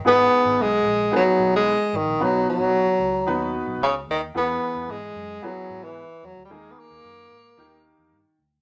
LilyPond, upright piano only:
<<
  \new Staff \with { instrumentName = "Upright piano" } { \time 4/4 \key gis \minor \tempo 4 = 112 <b dis' gis' b'>4 r4 <b dis' gis' b'>4 r4 | <b dis' fis' b'>4 r4 <b dis' fis' b'>4 r4 | <b e' gis' b'>4 r4 <b e' gis' b'>4 r4 | <ais dis' gis' ais'>4 r4 <ais dis' g' ais'>4 r4 | }
  \new Staff \with { instrumentName = "Upright piano" } { \clef bass \time 4/4 \key gis \minor gis,4. r2 r8 | b,4. r2 r8 | e4. r2 r8 | dis4. r8 dis4. r8 | }
>>